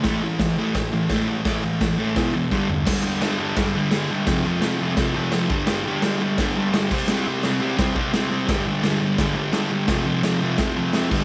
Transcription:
<<
  \new Staff \with { instrumentName = "Distorted electric guitar" } { \clef bass \time 4/4 \key g \mixolydian \tempo 4 = 171 <a, e a>8 <a, e>8 <a, e>8 <a, e a>8 <a, e>8 <a, e>8 <a, e a>8 <a, e>8 | <a, e a>8 <a, e>8 <a, e>8 <a, e a>8 <e, b, e>8 <e, b,>8 <g, d g>8 <g, d>8 | <g, d g>8 <g, d g>8 <g, d g>8 <g, d g>8 <g, d g>8 <g, d g>8 <g, d g>8 <g, d g>8 | <f, c f>8 <f, c f>8 <f, c f>8 <f, c f>8 <f, c f>8 <f, c f>8 <f, c f>8 <g, d g>8 |
<g, d g>8 <g, d g>8 <g, d g>8 <g, d g>8 <g, d g>8 <g, d g>8 <g, d g>8 <c g c'>8 | <c g c'>8 <c g c'>8 <c g c'>8 <c g c'>8 <c g c'>8 <c g c'>8 <c g c'>8 <c g c'>8 | <g, d g>8 <g, d g>8 <g, d g>8 <g, d g>8 <g, d g>8 <g, d g>8 <g, d g>8 <g, d g>8 | <f, c f>8 <f, c f>8 <f, c f>8 <f, c f>8 <f, c f>8 <f, c f>8 <f, c f>8 <g, d g>8 | }
  \new DrumStaff \with { instrumentName = "Drums" } \drummode { \time 4/4 <hho bd sn>4 <hho bd sn>4 <hho bd sn>4 <hho bd sn>4 | <hho bd sn>4 <hho bd sn>4 <hho bd sn>4 <bd sn>8 tomfh8 | <cymc bd sn>4 <cymc sn>4 <cymc bd sn>4 <cymc sn>4 | <cymc bd sn>4 <cymc sn>4 <cymc bd sn>4 <cymc sn>8 bd8 |
<cymc sn>4 <cymc sn>4 <cymc bd sn>4 <cymc sn>8 <cymc bd>8 | <cymc sn>4 <cymc sn>4 <cymc bd sn>8 bd8 <cymc sn>4 | <cymc bd sn>4 <cymc sn>4 <cymc bd sn>4 <cymc sn>4 | <cymc bd sn>4 <cymc sn>4 <cymc bd sn>4 <cymc sn>8 <cymc bd>8 | }
>>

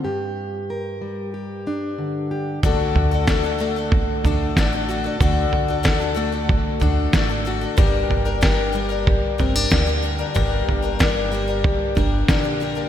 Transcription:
<<
  \new Staff \with { instrumentName = "Steel-string acoustic guitar" } { \time 4/4 \key g \minor \tempo 4 = 93 << { g'4 bes'4 g'8 d'4 g'8 | <a d' fis' a'>4 a'4 fis'8 d'4 fis'8 | fis'4 a'4 fis'8 d'4 fis'8 | g'4 bes'4 g'8 c'16 d'8. g'8 |
g'4 bes'4 g'8 d'4 g'8 | } \\ { g,4. g4. d4 | d4. a4. a,4 | d4. a2~ a8 | g,4. g4. d4 |
g,4. g4. d4 | } >> }
  \new Staff \with { instrumentName = "Twelve-string acoustic guitar" } { \time 4/4 \key g \minor r1 | <d a d' fis' a'>8. <d' fis' a'>16 <d a d' fis' a'>16 <d' fis' a'>16 <a d' fis' a'>16 <d' fis' a'>8. <a d' fis' a'>8 <d a d' fis' a'>16 <d' fis' a'>16 <a d' fis' a'>16 <d' fis' a'>16 | <d a d' fis' a'>8. <d' fis' a'>16 <d a d' fis' a'>16 <d' fis' a'>16 <a d' fis' a'>16 <d' fis' a'>8. <a d' fis' a'>8 <d a d' fis' a'>16 <d' fis' a'>16 <a d' fis' a'>16 <d' fis' a'>16 | <g, d g bes d' bes'>8. <g bes d' bes'>16 <g, d g bes d' bes'>8 <g bes d' bes'>16 <g bes d' bes'>8. <g bes d' bes'>8 <g, d g bes d' bes'>16 <g bes d' bes'>16 <g bes d' bes'>16 <g bes d' bes'>16 |
<g, d g bes d' bes'>8. <g bes d' bes'>16 <g, d g bes d' bes'>8 <g bes d' bes'>16 <g bes d' bes'>8. <g bes d' bes'>8 <g, d g bes d' bes'>16 <g bes d' bes'>16 <g bes d' bes'>16 <g bes d' bes'>16 | }
  \new Staff \with { instrumentName = "Upright bass" } { \clef bass \time 4/4 \key g \minor r1 | d,8 d,2 d,8 a,,4 | d,8 d,2 d,8 aes,,4 | g,,8 g,,2 g,,8 d,4 |
g,,8 g,,2 g,,8 bes,,4 | }
  \new DrumStaff \with { instrumentName = "Drums" } \drummode { \time 4/4 r4 r4 r4 r4 | <bd tomfh>8 tomfh8 <bd sn>4 <bd tomfh>8 tomfh8 <bd sn>4 | <bd tomfh>8 tomfh8 <bd sn>4 <bd tomfh>8 tomfh8 <bd sn>4 | <bd tomfh>8 tomfh8 <bd sn>4 <bd tomfh>8 tomfh8 <bd sn>4 |
<bd tomfh>8 tomfh8 <bd sn>4 <bd tomfh>8 tomfh8 <bd sn>4 | }
>>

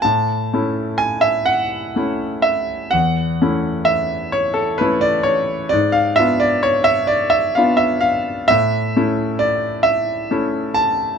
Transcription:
\new Staff \with { instrumentName = "Grand piano" } { \time 12/8 \key a \major \tempo 4. = 43 << { a''4 gis''16 e''16 fis''4 e''8 fis''4 e''8 cis''16 a'16 b'16 d''16 cis''8 | d''16 eis''16 e''16 d''16 cis''16 e''16 d''16 e''16 eis''16 e''16 eis''8 e''4 d''8 e''4 a''8 | } \\ { a,8 <a cis' e'>4. <a cis' e'>4 e,8 <a cis' e'>4. <a cis' e'>4 | gis,8 <b d' eis'>4. <b d' eis'>4 a,8 <a cis' e'>4. <a cis' e'>4 | } >> }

